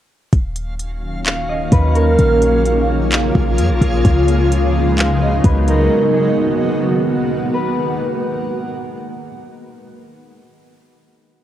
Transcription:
0.33 808-style bass D#1, ambient pad D#3 F#3 A#3 C#4 F5, synth texture C#4 F#4 F5, kick, closed hi-hat
0.56 closed hi-hat
0.79 closed hi-hat
1.26 harp F5, clap, closed hi-hat
1.49 harp D#5
1.72 808-style bass D#2, harp B4, kick, closed hi-hat
1.95 harp A#4, closed hi-hat
2.19 808-style bass A#1, ambient pad C#3 F3 G#3 F4, synth texture A#3 G#4 C#5, closed hi-hat
2.41 harp G#4, closed hi-hat
2.66 closed hi-hat
3.12 clap, closed hi-hat
3.35 808-style bass A#1, kick
3.58 808-style bass F2, closed hi-hat
3.70 808-style bass A#1
3.81 808-style bass A#1, kick, closed hi-hat
4.05 808-style bass C#2, ambient pad F#3 B3 D#4, kick, closed hi-hat
4.28 closed hi-hat
4.52 closed hi-hat
4.97 harp F5, clap, closed hi-hat
5.21 harp D#5
5.44 808-style bass C#2, harp B4, kick, closed hi-hat
5.68 harp A#4, closed hi-hat
5.91 ambient pad D#3 A#3 B3 F#4
6.14 harp G#4
7.54 harp B4

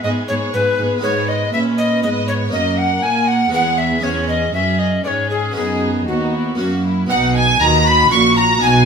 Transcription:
Already playing: harpsichord G#3 B3 D#4 G#4
0.03 cello section G#2, harpsichord G#2, viola section B3, violin section G#4 D#5, recorder D#5
0.28 harpsichord G#2, cello section G#2, viola section B3, violin section G#4 C#5, recorder C#5
0.54 cello section G#2, harpsichord G#2, viola section B3, violin section G#4 B4, recorder B4
0.79 harpsichord G#2, cello section G#2, viola section B3, violin section G#4
0.98 harpsichord G#3 B3 D#4
1.03 harpsichord G#2 G#4, cello section G#2, viola section G#3, violin section B4 C#5, recorder C#5
1.28 violin section D#5, recorder D#5
1.53 harpsichord A#2, cello section A#2, viola section C#4, recorder E5, violin section E5
1.78 recorder D#5, violin section D#5
2.03 harpsichord G#2, cello section G#2, viola section B3, recorder D#5, violin section D#5
2.28 violin section C#5, recorder C#5
2.49 harpsichord A#3 D#4 A#4, recorder D#5
2.53 harpsichord F#2, cello section F#2, viola section A#3, violin section A#4 D#5
2.78 recorder F#5, violin section F#5
3.03 harpsichord A#2, cello section A#2, viola section A#3, violin section G#5, recorder G#5
3.28 violin section F#5, recorder F#5
3.49 harpsichord G#3 B3 B4
3.53 harpsichord E2, cello section E2, viola section B3, violin section G#4 F#5, recorder F#5
3.78 violin section E5, recorder E5
3.99 harpsichord G#3 C#4 G#4
4.03 harpsichord E2, cello section E2, viola section C#4, violin section G#4 C#5, recorder C#5
4.28 recorder D#5, violin section D#5
4.54 cello section F#2, harpsichord F#2, viola section C#4, violin section G#4 E5, recorder E5
4.79 violin section D#5, recorder D#5
5.04 harpsichord G#2, cello section G#2, viola section C#4, violin section G#4 C#5, recorder C#5 D5
5.29 violin section G#4, recorder G#4
5.52 harpsichord B3 D#4 F#4, violin section G#4
5.56 cello section F#2, harpsichord F#2, viola section B3, violin section D#4, recorder G#4
6.07 cello section D#2, harpsichord D#2, viola section B3, violin section D#4 F#4, recorder F#4
6.34 violin section E4
6.55 cello section F#2, harpsichord A#3 C#4 F#4
6.59 harpsichord F#2, viola section A#3, violin section F#4
6.86 violin section E4
7.06 harpsichord B3 D#4 F#4, recorder F#5, violin section F#5
7.11 double bass section B1, cello section B2, harpsichord B2, viola section D#4, violin section F#5
7.35 violin section G#5, recorder G#5
7.61 double bass section D#2, cello section D#3, harpsichord D#3, viola section F#4, recorder A#5, violin section A#5
7.86 violin section B5, recorder B5
8.07 harpsichord C#4 F#4
8.11 double bass section A#1, cello section A#2, harpsichord A#2, viola section F#4, recorder C#6, violin section C#6
8.37 violin section A#5, recorder A#5
8.58 harpsichord D#4 F#4, violin section G#5
8.62 double bass section B1, cello section B2, harpsichord B2, recorder G#5, violin section G#5

